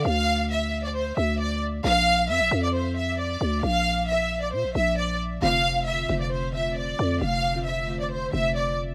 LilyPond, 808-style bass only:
\new Staff \with { instrumentName = "808-style bass" } { \clef bass \time 4/4 \key bes \lydian \tempo 4 = 134 d,2~ d,8 d,4. | bes,,4 f,16 bes,,16 f,2 d,8 | bes,,2 bes,16 bes,,16 bes,,4. | f,,4. f,,2 f,8 |
f,,2~ f,,8 f,,4. | }